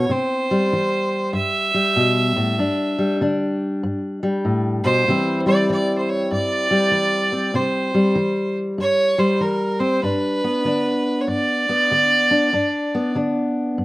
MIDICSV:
0, 0, Header, 1, 3, 480
1, 0, Start_track
1, 0, Tempo, 621118
1, 80, Time_signature, 4, 2, 24, 8
1, 10702, End_track
2, 0, Start_track
2, 0, Title_t, "Fiddle"
2, 0, Program_c, 0, 110
2, 0, Note_on_c, 0, 73, 83
2, 91, Note_on_c, 0, 72, 92
2, 102, Note_off_c, 0, 73, 0
2, 1030, Note_off_c, 0, 72, 0
2, 1034, Note_on_c, 0, 76, 99
2, 2439, Note_off_c, 0, 76, 0
2, 3737, Note_on_c, 0, 72, 101
2, 4181, Note_off_c, 0, 72, 0
2, 4227, Note_on_c, 0, 74, 88
2, 4383, Note_off_c, 0, 74, 0
2, 4417, Note_on_c, 0, 74, 88
2, 4615, Note_off_c, 0, 74, 0
2, 4619, Note_on_c, 0, 72, 67
2, 4708, Note_on_c, 0, 73, 81
2, 4720, Note_off_c, 0, 72, 0
2, 4875, Note_off_c, 0, 73, 0
2, 4882, Note_on_c, 0, 74, 101
2, 5836, Note_on_c, 0, 72, 80
2, 5847, Note_off_c, 0, 74, 0
2, 6612, Note_off_c, 0, 72, 0
2, 6805, Note_on_c, 0, 73, 93
2, 7100, Note_on_c, 0, 72, 80
2, 7111, Note_off_c, 0, 73, 0
2, 7276, Note_on_c, 0, 70, 77
2, 7287, Note_off_c, 0, 72, 0
2, 7569, Note_on_c, 0, 72, 86
2, 7581, Note_off_c, 0, 70, 0
2, 7746, Note_off_c, 0, 72, 0
2, 7756, Note_on_c, 0, 71, 89
2, 8663, Note_on_c, 0, 73, 68
2, 8675, Note_off_c, 0, 71, 0
2, 8714, Note_on_c, 0, 74, 104
2, 8726, Note_off_c, 0, 73, 0
2, 10160, Note_off_c, 0, 74, 0
2, 10702, End_track
3, 0, Start_track
3, 0, Title_t, "Steel-string acoustic guitar"
3, 0, Program_c, 1, 25
3, 73, Note_on_c, 1, 48, 67
3, 83, Note_on_c, 1, 60, 54
3, 394, Note_on_c, 1, 55, 55
3, 520, Note_off_c, 1, 48, 0
3, 560, Note_off_c, 1, 60, 0
3, 563, Note_on_c, 1, 52, 57
3, 1004, Note_off_c, 1, 52, 0
3, 1029, Note_on_c, 1, 43, 60
3, 1344, Note_off_c, 1, 55, 0
3, 1347, Note_on_c, 1, 55, 55
3, 1476, Note_off_c, 1, 43, 0
3, 1515, Note_on_c, 1, 47, 59
3, 1816, Note_off_c, 1, 47, 0
3, 1828, Note_on_c, 1, 45, 61
3, 1999, Note_off_c, 1, 45, 0
3, 1999, Note_on_c, 1, 43, 62
3, 2002, Note_on_c, 1, 62, 53
3, 2304, Note_off_c, 1, 55, 0
3, 2307, Note_on_c, 1, 55, 57
3, 2439, Note_off_c, 1, 43, 0
3, 2476, Note_off_c, 1, 62, 0
3, 2481, Note_on_c, 1, 50, 55
3, 2488, Note_on_c, 1, 62, 50
3, 2919, Note_off_c, 1, 50, 0
3, 2963, Note_on_c, 1, 43, 59
3, 3265, Note_off_c, 1, 55, 0
3, 3268, Note_on_c, 1, 55, 54
3, 3399, Note_off_c, 1, 43, 0
3, 3438, Note_on_c, 1, 45, 53
3, 3734, Note_off_c, 1, 45, 0
3, 3745, Note_on_c, 1, 47, 57
3, 3893, Note_off_c, 1, 62, 0
3, 3914, Note_off_c, 1, 47, 0
3, 3924, Note_on_c, 1, 48, 65
3, 3927, Note_on_c, 1, 52, 54
3, 3929, Note_off_c, 1, 55, 0
3, 3932, Note_on_c, 1, 55, 54
3, 3938, Note_on_c, 1, 60, 54
3, 3945, Note_on_c, 1, 64, 62
3, 4217, Note_off_c, 1, 55, 0
3, 4220, Note_on_c, 1, 55, 50
3, 4358, Note_off_c, 1, 48, 0
3, 4399, Note_off_c, 1, 52, 0
3, 4402, Note_on_c, 1, 52, 57
3, 4837, Note_off_c, 1, 52, 0
3, 4879, Note_on_c, 1, 43, 56
3, 5180, Note_off_c, 1, 55, 0
3, 5183, Note_on_c, 1, 55, 58
3, 5315, Note_off_c, 1, 43, 0
3, 5342, Note_on_c, 1, 52, 58
3, 5656, Note_off_c, 1, 60, 0
3, 5660, Note_on_c, 1, 60, 51
3, 5787, Note_off_c, 1, 52, 0
3, 5808, Note_off_c, 1, 60, 0
3, 5826, Note_on_c, 1, 48, 66
3, 5833, Note_on_c, 1, 60, 53
3, 6135, Note_off_c, 1, 55, 0
3, 6139, Note_on_c, 1, 55, 57
3, 6269, Note_off_c, 1, 48, 0
3, 6301, Note_on_c, 1, 52, 54
3, 6308, Note_off_c, 1, 60, 0
3, 6747, Note_off_c, 1, 52, 0
3, 6786, Note_on_c, 1, 43, 58
3, 7093, Note_off_c, 1, 55, 0
3, 7096, Note_on_c, 1, 55, 56
3, 7230, Note_off_c, 1, 43, 0
3, 7268, Note_on_c, 1, 52, 61
3, 7574, Note_on_c, 1, 60, 54
3, 7711, Note_off_c, 1, 52, 0
3, 7727, Note_off_c, 1, 60, 0
3, 7751, Note_on_c, 1, 43, 64
3, 7758, Note_on_c, 1, 62, 56
3, 7764, Note_off_c, 1, 64, 0
3, 8067, Note_off_c, 1, 55, 0
3, 8070, Note_on_c, 1, 59, 53
3, 8194, Note_off_c, 1, 43, 0
3, 8228, Note_on_c, 1, 50, 54
3, 8236, Note_off_c, 1, 62, 0
3, 8239, Note_on_c, 1, 62, 55
3, 8674, Note_off_c, 1, 50, 0
3, 8714, Note_on_c, 1, 43, 57
3, 9023, Note_off_c, 1, 59, 0
3, 9036, Note_on_c, 1, 59, 56
3, 9158, Note_off_c, 1, 43, 0
3, 9206, Note_on_c, 1, 50, 57
3, 9509, Note_off_c, 1, 62, 0
3, 9512, Note_on_c, 1, 62, 58
3, 9646, Note_off_c, 1, 50, 0
3, 9664, Note_off_c, 1, 59, 0
3, 9682, Note_on_c, 1, 43, 61
3, 9685, Note_off_c, 1, 62, 0
3, 9688, Note_on_c, 1, 62, 57
3, 10005, Note_on_c, 1, 59, 55
3, 10125, Note_off_c, 1, 43, 0
3, 10163, Note_on_c, 1, 50, 56
3, 10166, Note_off_c, 1, 62, 0
3, 10170, Note_on_c, 1, 62, 54
3, 10608, Note_off_c, 1, 50, 0
3, 10649, Note_on_c, 1, 43, 55
3, 10702, Note_off_c, 1, 43, 0
3, 10702, Note_off_c, 1, 59, 0
3, 10702, Note_off_c, 1, 62, 0
3, 10702, End_track
0, 0, End_of_file